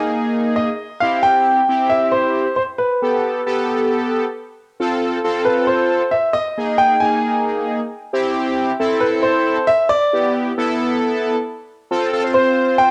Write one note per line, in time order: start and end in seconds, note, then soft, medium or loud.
0.00 0.69 A#3 medium
0.00 0.69 D#4 medium
0.00 0.69 G#4 medium
0.00 0.31 G#5 medium
0.56 0.98 D#5 medium
1.00 1.61 C4 medium
1.00 1.61 E4 medium
1.00 1.61 G4 medium
1.00 1.24 F5 medium
1.23 1.86 G5 loud
1.69 2.47 C4 medium
1.69 2.47 E4 medium
1.69 2.47 G4 medium
1.90 2.11 E5 medium
2.12 2.55 C5 medium
2.56 2.61 C5 medium
2.78 3.64 B4 medium
3.02 3.41 B3 medium
3.02 3.41 G4 medium
3.02 3.41 A4 medium
3.46 4.25 B3 medium
3.46 4.25 G4 medium
3.46 4.25 A4 loud
4.80 5.19 C4 medium
4.80 5.19 F4 medium
4.80 5.19 A4 loud
5.24 6.03 C4 medium
5.24 6.03 F4 medium
5.24 6.03 A4 loud
5.45 5.66 B4 medium
5.67 6.14 C5 medium
6.11 6.35 E5 medium
6.33 6.76 D#5 loud
6.58 6.97 A#3 medium
6.58 6.97 D#4 medium
6.58 6.97 G#4 medium
6.78 7.02 G5 loud
7.00 7.80 A#3 medium
7.00 7.80 D#4 medium
7.00 7.80 G#4 medium
7.00 7.42 G#5 medium
8.13 8.72 C4 medium
8.13 8.72 E4 medium
8.13 8.72 G4 loud
8.80 9.58 C4 medium
8.80 9.58 E4 medium
8.80 9.58 A4 loud
9.01 9.06 B4 medium
9.23 9.69 C5 medium
9.67 9.89 E5 loud
9.89 10.31 D5 loud
10.13 10.52 B3 medium
10.13 10.52 E4 medium
10.13 10.52 G4 medium
10.58 11.36 B3 medium
10.58 11.36 E4 medium
10.58 11.36 A4 loud
11.91 12.10 C4 medium
11.91 12.10 F4 medium
11.91 12.10 A4 loud
12.13 12.23 C4 medium
12.13 12.23 F4 medium
12.13 12.23 A4 loud
12.24 12.91 C4 medium
12.24 12.91 F4 medium
12.24 12.91 C5 medium
12.34 12.80 C5 medium
12.78 12.91 G5 loud